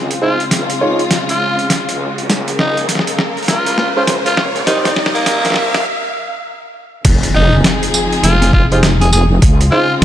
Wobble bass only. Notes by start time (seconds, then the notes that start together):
Already playing: C#2
0.51 C#2
1.88 C#2
2.29 A#1
2.59 A#1
3.48 A#1
3.78 A#1
4.67 C2
5.26 C2
5.75 C2
7.05 F1
7.34 F1
8.23 F1
8.53 F1
9.42 C#2